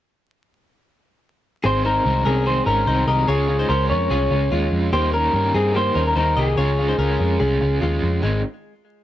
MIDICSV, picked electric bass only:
0, 0, Header, 1, 2, 480
1, 0, Start_track
1, 0, Key_signature, -4, "major"
1, 0, Tempo, 411805
1, 1912, Time_signature, 4, 2, 24, 8
1, 10534, End_track
2, 0, Start_track
2, 0, Title_t, "Picked electric bass"
2, 0, Program_c, 0, 34
2, 1922, Note_on_c, 0, 32, 86
2, 2325, Note_off_c, 0, 32, 0
2, 2394, Note_on_c, 0, 36, 80
2, 2596, Note_off_c, 0, 36, 0
2, 2633, Note_on_c, 0, 36, 76
2, 3039, Note_off_c, 0, 36, 0
2, 3106, Note_on_c, 0, 32, 73
2, 3311, Note_off_c, 0, 32, 0
2, 3343, Note_on_c, 0, 36, 82
2, 3549, Note_off_c, 0, 36, 0
2, 3582, Note_on_c, 0, 36, 80
2, 3789, Note_off_c, 0, 36, 0
2, 3822, Note_on_c, 0, 37, 83
2, 4232, Note_off_c, 0, 37, 0
2, 4304, Note_on_c, 0, 37, 79
2, 4544, Note_on_c, 0, 41, 79
2, 4562, Note_off_c, 0, 37, 0
2, 4749, Note_off_c, 0, 41, 0
2, 4784, Note_on_c, 0, 36, 87
2, 4989, Note_off_c, 0, 36, 0
2, 5020, Note_on_c, 0, 37, 80
2, 5227, Note_off_c, 0, 37, 0
2, 5263, Note_on_c, 0, 39, 91
2, 5469, Note_off_c, 0, 39, 0
2, 5500, Note_on_c, 0, 41, 76
2, 5707, Note_off_c, 0, 41, 0
2, 5742, Note_on_c, 0, 39, 101
2, 6152, Note_off_c, 0, 39, 0
2, 6218, Note_on_c, 0, 43, 78
2, 6426, Note_off_c, 0, 43, 0
2, 6464, Note_on_c, 0, 43, 84
2, 6874, Note_off_c, 0, 43, 0
2, 6941, Note_on_c, 0, 39, 76
2, 7148, Note_off_c, 0, 39, 0
2, 7183, Note_on_c, 0, 39, 85
2, 7389, Note_off_c, 0, 39, 0
2, 7425, Note_on_c, 0, 36, 84
2, 7631, Note_off_c, 0, 36, 0
2, 7661, Note_on_c, 0, 37, 90
2, 8074, Note_off_c, 0, 37, 0
2, 8141, Note_on_c, 0, 37, 83
2, 8349, Note_off_c, 0, 37, 0
2, 8387, Note_on_c, 0, 41, 86
2, 8593, Note_off_c, 0, 41, 0
2, 8632, Note_on_c, 0, 36, 93
2, 8836, Note_off_c, 0, 36, 0
2, 8879, Note_on_c, 0, 37, 80
2, 9080, Note_off_c, 0, 37, 0
2, 9110, Note_on_c, 0, 39, 78
2, 9316, Note_off_c, 0, 39, 0
2, 9357, Note_on_c, 0, 41, 74
2, 9560, Note_off_c, 0, 41, 0
2, 9597, Note_on_c, 0, 32, 89
2, 9819, Note_off_c, 0, 32, 0
2, 10534, End_track
0, 0, End_of_file